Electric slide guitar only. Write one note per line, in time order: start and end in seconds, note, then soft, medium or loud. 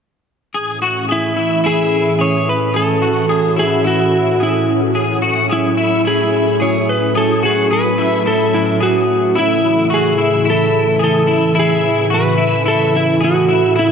1.12 1.68 E4 medium
1.66 2.22 G#4 medium
2.21 2.49 C#5 medium
2.49 2.77 B4 medium
2.76 3.59 A4 medium
3.59 3.87 G#4 medium
3.87 4.43 F#4 medium
4.43 4.80 E4 medium
5.53 6.08 E4 medium
6.07 6.63 G#4 medium
6.62 6.89 C#5 medium
6.89 7.17 B4 medium
7.17 7.45 A4 medium
7.45 7.72 G#4 medium
7.73 8.28 B4 medium
8.27 9.05 A4 medium
8.54 8.79 E4 medium
8.83 9.38 F#4 medium
9.39 9.89 E4 medium
9.94 10.49 G#4 medium
10.50 11.03 A4 medium
11.04 11.59 A4 medium
11.59 12.14 G#4 medium
12.14 12.69 B4 medium
12.68 12.95 A4 medium
12.97 13.23 E4 medium
13.24 13.79 F#4 medium
13.79 13.92 E4 medium